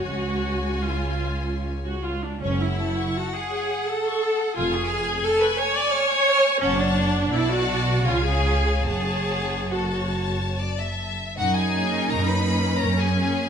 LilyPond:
<<
  \new Staff \with { instrumentName = "Violin section" } { \time 3/4 \key fis \minor \tempo 4 = 82 gis''2~ gis''8 r8 | fis''2. | gis''2. | a''4 a''4 gis''4 |
a''4 a''4. r8 | \key fis \major fis''16 gis''8. ais''16 b''8. ais''16 gis''8. | }
  \new Staff \with { instrumentName = "Violin section" } { \time 3/4 \key fis \minor << { cis''2~ cis''8. r16 | cis''16 fis''16 a''16 cis'''16 a''16 fis''16 cis''16 fis''16 a''16 cis'''16 a''16 fis''16 | gis''16 cis'''16 eis'''16 gis'''16 eis'''16 cis'''16 gis''16 cis'''16 eis'''16 gis'''16 eis'''16 cis'''16 | fis''4 fis''4 eis''4 |
fis''4 a'16 cis''8. d''16 e''8. | \key fis \major fis'16 gis'8. ais'16 b'8. ais'16 gis'8. | } \\ { r2. | cis''2.~ | cis''2. | cis''4 d''4 cis''4 |
cis''4 r2 | r2. | } >> }
  \new Staff \with { instrumentName = "Viola section" } { \time 3/4 \key fis \minor fis'4 eis'4 r16 fis'16 eis'16 d'16 | cis'16 e'8. fis'16 gis'8. a'4 | eis'16 gis'8. a'16 b'16 cis''16 d''16 cis''4 | cis'16 d'8. e'16 fis'8. eis'16 gis'8. |
gis'4 fis'4 r4 | \key fis \major r8 <ais cis'>4 <ais cis'>4 <ais cis'>8 | }
  \new Staff \with { instrumentName = "Cello section" } { \clef bass \time 3/4 \key fis \minor cis,2~ cis,8 r8 | fis,4 r2 | eis,4 r2 | fis,4 b,4 cis4 |
fis,2~ fis,8 r8 | \key fis \major dis'2 cis'4 | }
  \new Staff \with { instrumentName = "Double bass section" } { \clef bass \time 3/4 \key fis \minor cis,2~ cis,8 r8 | fis,,4 r2 | eis,,4 r2 | fis,,4 b,,4 cis,4 |
fis,,2~ fis,,8 r8 | \key fis \major fis,4 fis,4 fis,4 | }
>>